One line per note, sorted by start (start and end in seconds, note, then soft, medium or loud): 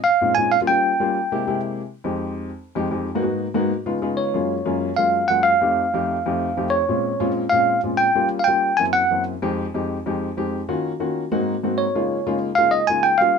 0.04 0.34 F5 medium
0.21 0.33 A#2 medium
0.21 0.33 G#3 medium
0.21 0.33 C4 medium
0.21 0.33 C#4 medium
0.21 0.33 D#4 medium
0.21 0.33 F4 medium
0.35 0.53 A#2 medium
0.35 0.53 G#3 medium
0.35 0.53 C4 medium
0.35 0.53 C#4 medium
0.35 0.53 D#4 medium
0.35 0.53 F4 medium
0.35 0.51 G#5 medium
0.52 0.59 F5 loud
0.61 0.67 G3 medium
0.61 0.67 A#3 medium
0.61 0.67 C#4 medium
0.61 0.67 F4 medium
0.67 0.91 G3 medium
0.67 0.91 A#3 medium
0.67 0.91 C#4 medium
0.67 0.91 F4 medium
0.67 1.60 G5 medium
1.00 1.16 G3 medium
1.00 1.17 A#3 medium
1.00 1.17 C#4 medium
1.00 1.17 F4 medium
1.32 1.43 C3 medium
1.32 1.44 G#3 medium
1.32 1.44 A#3 medium
1.32 1.44 E4 medium
1.32 1.44 G4 loud
1.47 1.80 C3 medium
1.47 1.80 G#3 medium
1.47 1.80 A#3 medium
1.47 1.80 E4 medium
1.47 1.80 G4 medium
2.04 2.49 F2 medium
2.04 2.49 G#3 medium
2.04 2.49 C4 medium
2.04 2.49 D#4 medium
2.04 2.49 G4 medium
2.75 2.87 F2 medium
2.75 2.87 G#3 medium
2.75 2.87 C4 medium
2.75 2.87 D#4 medium
2.75 2.87 G4 loud
2.91 3.07 F2 medium
2.91 3.07 G#3 medium
2.91 3.07 C4 medium
2.91 3.07 D#4 medium
2.91 3.07 G4 medium
3.15 3.21 G#2 medium
3.15 3.21 A#3 medium
3.15 3.21 B3 medium
3.15 3.21 D#4 medium
3.15 3.21 F#4 loud
3.23 3.46 G#2 medium
3.23 3.45 A#3 medium
3.23 3.45 B3 medium
3.23 3.45 D#4 medium
3.23 3.46 F#4 medium
3.54 3.71 G#2 loud
3.54 3.71 A#3 medium
3.54 3.71 B3 medium
3.54 3.71 D#4 medium
3.54 3.71 F#4 loud
3.86 3.98 C#3 medium
3.86 3.98 G#3 medium
3.86 3.98 B3 medium
3.86 3.98 D#4 medium
3.86 3.98 F4 medium
4.02 4.34 C#3 medium
4.02 4.33 G#3 medium
4.02 4.34 B3 medium
4.02 4.34 D#4 medium
4.02 4.33 F4 medium
4.17 4.93 C#5 medium
4.34 4.57 F#2 medium
4.34 4.57 G#3 medium
4.34 4.57 A#3 medium
4.34 4.57 C#4 medium
4.34 4.57 F4 medium
4.66 4.88 F#2 medium
4.66 4.88 G#3 medium
4.66 4.88 A#3 medium
4.66 4.88 C#4 medium
4.66 4.88 F4 medium
4.97 5.20 F#2 medium
4.97 5.20 G#3 medium
4.97 5.20 A#3 medium
4.97 5.20 C#4 medium
4.97 5.20 F4 medium
4.97 5.27 F5 medium
5.28 5.52 F#2 medium
5.28 5.52 G#3 medium
5.28 5.52 A#3 medium
5.28 5.52 C#4 medium
5.28 5.52 F4 medium
5.28 5.44 F#5 medium
5.43 6.67 F5 medium
5.61 5.84 F2 medium
5.61 5.84 A3 medium
5.61 5.84 C4 medium
5.61 5.84 D#4 medium
5.61 5.84 G4 medium
5.94 6.16 F2 medium
5.94 6.16 A3 medium
5.94 6.16 C4 medium
5.94 6.16 D#4 medium
5.94 6.16 G4 medium
6.26 6.48 F2 medium
6.26 6.48 A3 medium
6.26 6.48 C4 medium
6.26 6.48 D#4 medium
6.26 6.48 G4 medium
6.57 6.79 F2 medium
6.57 6.79 A3 medium
6.57 6.79 C4 medium
6.57 6.79 D#4 medium
6.57 6.79 G4 medium
6.70 7.31 C#5 medium
6.89 7.11 A#2 medium
6.89 7.11 G#3 medium
6.89 7.11 C4 medium
6.89 7.11 C#4 medium
6.89 7.11 F4 medium
7.20 7.42 A#2 medium
7.20 7.42 G#3 medium
7.20 7.42 C4 medium
7.20 7.42 C#4 medium
7.20 7.42 F4 medium
7.50 7.74 A#2 medium
7.50 7.74 G#3 medium
7.50 7.74 C4 medium
7.50 7.74 C#4 medium
7.50 7.74 F4 medium
7.50 7.80 F5 loud
7.83 8.06 A#2 medium
7.83 8.06 G#3 medium
7.83 8.06 C4 medium
7.83 8.06 C#4 medium
7.83 8.06 F4 medium
7.97 8.28 G5 loud
8.15 8.38 G3 medium
8.15 8.38 A#3 medium
8.15 8.38 C#4 medium
8.15 8.38 F4 medium
8.39 8.47 F5 medium
8.44 8.69 G3 medium
8.44 8.70 A#3 medium
8.44 8.69 C#4 medium
8.44 8.69 F4 medium
8.44 8.78 G5 medium
8.77 9.01 F#2 medium
8.77 9.01 A#3 medium
8.77 9.01 C4 medium
8.77 9.01 C#4 medium
8.77 9.01 E4 medium
8.77 8.84 G#5 loud
8.93 9.23 F#5 loud
9.11 9.33 F#2 medium
9.11 9.33 A#3 medium
9.11 9.33 C4 medium
9.11 9.33 C#4 medium
9.11 9.33 E4 medium
9.42 9.64 F2 loud
9.42 9.64 G#3 medium
9.42 9.64 C4 medium
9.42 9.64 D#4 medium
9.42 9.64 G4 loud
9.74 9.96 F2 medium
9.74 9.96 G#3 medium
9.74 9.96 C4 medium
9.74 9.96 D#4 medium
9.74 9.96 G4 medium
10.06 10.28 F2 medium
10.06 10.28 G#3 medium
10.06 10.28 C4 medium
10.06 10.28 D#4 medium
10.06 10.28 G4 medium
10.37 10.59 F2 medium
10.37 10.59 G#3 medium
10.37 10.59 C4 medium
10.37 10.59 D#4 medium
10.37 10.59 G4 medium
10.68 10.91 D#3 medium
10.68 10.90 A#3 medium
10.68 10.91 C#4 medium
10.68 10.91 F4 medium
10.68 10.91 F#4 medium
11.00 11.22 D#3 medium
11.00 11.22 A#3 medium
11.00 11.22 C#4 medium
11.00 11.22 F4 medium
11.00 11.22 F#4 medium
11.32 11.54 G#2 medium
11.32 11.54 A#3 medium
11.32 11.54 C4 medium
11.32 11.54 D#4 medium
11.32 11.54 F#4 loud
11.63 11.85 G#2 medium
11.63 11.85 A#3 medium
11.63 11.86 C4 medium
11.63 11.86 D#4 medium
11.63 11.86 F#4 medium
11.78 12.37 C#5 medium
11.95 12.17 C#3 medium
11.95 12.17 G#3 medium
11.95 12.17 A#3 medium
11.95 12.17 D#4 medium
11.95 12.17 F4 medium
12.26 12.48 C#3 medium
12.26 12.48 G#3 medium
12.26 12.49 A#3 medium
12.26 12.48 D#4 medium
12.26 12.48 F4 loud
12.55 12.80 C#3 medium
12.55 12.80 G#3 medium
12.55 12.80 A#3 medium
12.55 12.80 D#4 medium
12.55 12.80 F4 medium
12.55 12.71 F5 loud
12.71 12.87 D#5 medium
12.87 13.11 C#3 medium
12.87 13.11 G#3 medium
12.87 13.11 A#3 medium
12.87 13.11 D#4 medium
12.87 13.11 F4 medium
12.87 13.05 G#5 medium
13.03 13.20 G5 loud
13.18 13.39 G3 medium
13.18 13.39 A#3 medium
13.18 13.39 C#4 medium
13.18 13.39 F4 medium
13.18 13.39 F5 loud